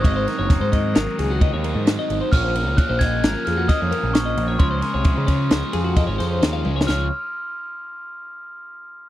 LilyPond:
<<
  \new Staff \with { instrumentName = "Glockenspiel" } { \time 5/4 \key bes \minor \tempo 4 = 132 des'''2. r2 | f'''4 ges'''8 aes'''4 f'''8 ees'''4 des'''4 | c'''1 r4 | f'''8 r1 r8 | }
  \new Staff \with { instrumentName = "Clean electric guitar" } { \time 5/4 \key bes \minor ees''16 c''16 bes'16 des''8 c''16 ees''8 bes'8 aes'16 ges'16 ees''16 des''16 bes'8 r16 ees''8 c''16 | des''16 c''16 bes'16 des''8 c''16 ees''8 bes'8 aes'16 ges'16 ees''16 des''16 bes'8 r16 ees''8 des''16 | des''16 c''16 bes'16 des''8 c''16 des''8 bes'8 aes'16 ges'16 ees''16 des''16 c''8 r16 f''8 des''16 | des''8 r1 r8 | }
  \new Staff \with { instrumentName = "Overdriven electric guitar" } { \clef bass \time 5/4 \key bes \minor <aes, ees ges c' ees'>8 <ges c' ees'>8 <ees ges c' ees'>8 <aes, ees ges c' ees'>8 <ees ges c' ees'>8 <aes, ees ges c' ees'>8 <ees ges c' ees'>8 <ges c' ees'>8 <aes, ees ges c' ees'>8 <ges c' ees'>8 | <bes, f bes des'>8 <f bes des'>8 <bes, f bes des'>8 <bes, f bes des'>8 <bes, f bes des'>8 <bes, f bes des'>8 <bes, f bes des'>8 <f bes des'>8 <bes, f bes des'>8 <f bes des'>8 | <des f aes des'>8 <f aes des'>8 <des f aes des'>8 <des f aes des'>8 <des f aes des'>8 <des f aes des'>8 <des f aes des'>8 <f aes des'>8 <des f aes des'>8 <f aes des'>8 | <des f aes des'>8 r1 r8 | }
  \new Staff \with { instrumentName = "Picked electric bass" } { \clef bass \time 5/4 \key bes \minor aes,,8 r16 ges,,8 aes,8. aes,,16 r16 des,8. ees,8 aes,8 r16 aes,,16 r16 | bes,,8. des,16 r16 bes,,8. aes,,16 r16 f,8 r16 f,16 r16 bes,,8. bes,,8 | des,8 r16 c,8 des8. des,16 r16 f,8. aes,,16 f,8 ees,8 des,8 | des,8 r1 r8 | }
  \new DrumStaff \with { instrumentName = "Drums" } \drummode { \time 5/4 <bd cymr>8 <cymr sn>8 <bd cymr sn>8 <bd cymr>8 <cymr sn>8 <cymr sn>8 <bd cymr>8 cymr8 <cymr sn>8 cymr8 | <cymc bd>8 cymr8 <bd cymr>8 <bd cymr sn>8 <cymr sn>8 <cymr sn>8 <bd cymr sn>8 cymr8 <cymr sn>8 cymr8 | <bd cymr>8 <cymr sn>8 <bd cymr>8 <bd cymr>8 <cymr sn>8 cymr8 <bd cymr>8 <cymr sn>8 \tuplet 3/2 { <cymr sn>16 r16 r16 tommh16 r16 sn16 } | <cymc sn>4 r4 r4 r4 r4 | }
>>